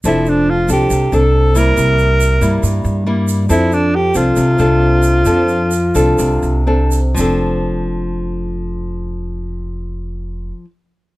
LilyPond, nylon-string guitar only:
\new Staff \with { instrumentName = "Nylon-string guitar" } { \time 4/4 \key f \major \tempo 4 = 132 << { <c' d' a'>4. <c' d' a'>4 <c' d' a'>4 <g bes e'>8~ | <g bes e'>4. <g bes e'>4. <g bes e'>4 | <c' d' a'>4. <c' d' a'>4 <c' d' a'>4. | <c' d' a'>4 r8 <c' d' a'>4. <c' d' a'>8 r8 |
<f c' d' a'>1~ | <f c' d' a'>1 | } \\ { f2 c2 | c2 g,2 | f2 c2 | f2 c2 |
r1 | r1 | } >> }